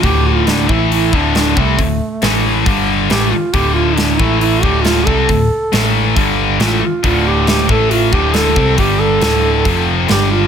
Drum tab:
HH |o-o-o-o-|o-o-o-o-|o-o-o-o-|o-o-o-o-|
SD |--o---o-|--o---o-|--o---o-|--o---o-|
BD |o--o-o-o|o---o---|o--o-o-o|o---o---|

HH |o-o-o-o-|o-o-o-o-|
SD |--o---o-|--o---o-|
BD |o--o-o-o|o---o---|